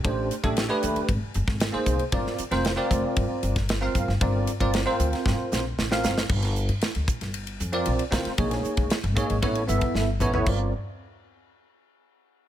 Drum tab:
CC |----------------|----------------|----------------|x---------------|
RD |x-xxx-xxx-x-x-xx|x-xxx-x-x-xxx-x-|x-xxx-xx--------|-x-xxx-xxx-xxx-x|
HH |--p---p---p---p-|--p---p---p---p-|--p---p---p---p-|--p---p---p---p-|
SD |----o------oo---|-o-oo------oo--o|----o--oo-o-oooo|-o--o--o------oo|
T2 |----------------|----------------|----------------|----------------|
FT |----------------|----------------|----------------|----------------|
BD |o--o----o--o--o-|o-----o-o--o--o-|o--o----o-------|o-----o-------o-|

CC |----------------|x---------------|
RD |xx-xxx-xxx-x----|----------------|
HH |--p---p---p---p-|----------------|
SD |-o--o-------o---|----------------|
T2 |--------------o-|----------------|
FT |---------------o|----------------|
BD |o--o--o-o--o----|o---------------|